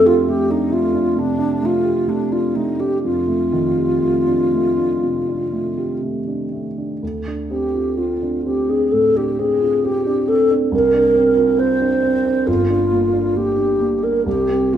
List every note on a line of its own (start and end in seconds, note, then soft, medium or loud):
0.00 1.12 F2 medium
0.00 0.19 A3 medium
0.00 0.50 D4 medium
0.06 0.30 F4 medium
0.06 0.41 G4 medium
0.28 0.63 A3 medium
0.28 0.52 G4 medium
0.50 0.85 D4 soft
0.50 0.74 D#4 medium
0.72 1.08 A3 medium
0.72 1.20 F4 medium
0.94 1.30 D4 medium
1.16 1.53 C3 medium
1.16 1.66 D4 medium
1.39 1.76 D4 medium
1.62 1.99 A3 soft
1.62 2.10 F4 medium
1.85 2.23 G4 medium
2.07 2.46 A3 soft
2.07 2.33 D4 medium
2.32 2.70 D4 soft
2.32 2.56 F4 medium
2.55 2.94 A3 soft
2.55 2.81 D#4 medium
2.79 3.18 D4 soft
2.79 3.02 G4 medium
3.03 4.99 F2 medium
3.03 5.98 F4 medium
3.28 3.67 A3 soft
3.52 3.92 D#3 soft
3.78 4.18 G4 soft
4.01 4.42 A3 soft
4.27 4.68 D4 soft
4.53 4.93 A3 soft
4.78 5.18 D4 soft
5.03 5.43 C3 soft
5.29 5.68 D4 soft
5.53 5.93 A3 soft
5.78 6.18 G4 soft
6.03 6.43 A3 soft
6.27 6.67 D4 soft
6.52 6.92 A3 soft
6.78 7.02 D4 soft
7.02 8.89 D2 soft
7.27 7.65 D4 soft
7.50 7.89 C4 soft
7.50 7.98 G4 medium
7.75 8.13 F4 soft
7.97 8.36 C4 soft
7.97 8.44 F4 medium
8.23 8.60 D4 soft
8.45 8.84 C4 soft
8.45 8.70 G4 medium
8.69 9.07 D4 soft
8.69 8.93 G#4 medium
8.91 9.30 A2 soft
8.91 9.18 A4 medium
9.16 9.53 D4 soft
9.16 9.40 G4 medium
9.39 9.76 C4 soft
9.39 9.86 G#4 medium
9.61 9.98 F4 soft
9.84 10.20 C4 soft
9.84 10.29 G4 medium
10.07 10.42 D4 soft
10.28 10.64 C4 soft
10.28 10.52 A4 medium
10.51 10.73 D4 soft
10.71 12.43 C2 medium
10.71 11.60 A#4 medium
10.94 11.29 D4 soft
11.15 11.51 C4 soft
11.37 11.72 F4 soft
11.58 11.94 C4 soft
11.58 12.48 C5 medium
11.81 12.17 D4 soft
12.03 12.39 C4 medium
12.25 12.48 D4 soft
12.47 14.22 G1 medium
12.47 13.38 F4 medium
12.70 13.05 D4 soft
12.92 13.27 A#3 medium
13.13 13.48 D4 medium
13.35 13.71 A#3 soft
13.35 14.04 G4 medium
13.57 13.94 D4 soft
13.80 14.16 A#3 soft
14.03 14.26 D4 soft
14.03 14.25 A#4 medium
14.26 14.77 C2 medium
14.26 14.75 G4 medium
14.49 14.77 C4 soft
14.73 14.77 A#3 soft
14.73 14.77 F4 medium